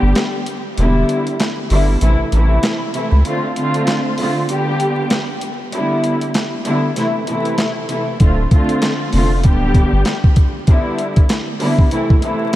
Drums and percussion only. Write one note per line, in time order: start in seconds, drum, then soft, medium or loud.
0.15 snare loud
0.15 clap medium
0.15 closed hi-hat medium
0.46 closed hi-hat medium
0.78 closed hi-hat medium
1.09 closed hi-hat medium
1.27 closed hi-hat medium
1.40 snare loud
1.40 clap medium
1.40 closed hi-hat loud
1.70 open hi-hat medium
2.01 closed hi-hat medium
2.32 closed hi-hat medium
2.63 snare loud
2.63 clap loud
2.63 closed hi-hat medium
2.94 closed hi-hat medium
3.25 closed hi-hat medium
3.56 closed hi-hat medium
3.74 closed hi-hat medium
3.87 snare loud
3.87 clap medium
3.87 closed hi-hat loud
4.18 open hi-hat medium
4.49 closed hi-hat medium
4.80 closed hi-hat medium
5.10 snare loud
5.10 clap medium
5.10 closed hi-hat medium
5.41 closed hi-hat medium
5.72 closed hi-hat medium
6.04 closed hi-hat medium
6.21 closed hi-hat medium
6.34 snare loud
6.34 clap medium
6.34 closed hi-hat loud
6.65 closed hi-hat medium
6.96 snare soft
6.96 closed hi-hat medium
7.27 closed hi-hat medium
7.45 closed hi-hat soft
7.58 snare loud
7.58 clap loud
7.58 closed hi-hat medium
7.89 closed hi-hat medium
8.20 kick loud
8.20 closed hi-hat medium
8.51 kick loud
8.51 closed hi-hat medium
8.69 closed hi-hat medium
8.82 snare loud
8.82 clap medium
8.82 closed hi-hat loud
9.13 open hi-hat medium
9.44 kick medium
9.44 closed hi-hat medium
9.74 kick medium
9.74 closed hi-hat medium
10.05 snare loud
10.05 clap medium
10.05 closed hi-hat medium
10.24 kick medium
10.36 kick medium
10.36 closed hi-hat medium
10.67 kick loud
10.67 closed hi-hat medium
10.99 closed hi-hat medium
11.16 kick loud
11.16 closed hi-hat medium
11.29 snare loud
11.29 clap medium
11.29 closed hi-hat loud
11.60 open hi-hat medium
11.79 kick loud
11.91 closed hi-hat medium
12.10 kick medium
12.22 closed hi-hat medium